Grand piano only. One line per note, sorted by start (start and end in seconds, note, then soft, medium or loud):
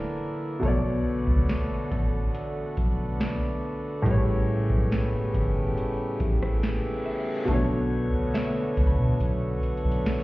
0.00 0.14 F#3 medium
0.00 0.16 E4 medium
0.00 0.18 D5 medium
0.60 4.00 B2 medium
0.60 4.02 A3 medium
0.65 4.03 C#5 medium
0.65 4.04 D5 medium
4.02 7.43 A2 medium
4.02 7.44 G3 medium
4.08 7.46 B4 medium
4.08 7.47 C#5 medium
7.45 10.24 B2 medium
7.45 10.24 A3 medium
7.51 10.24 D4 medium
7.51 10.24 C#5 medium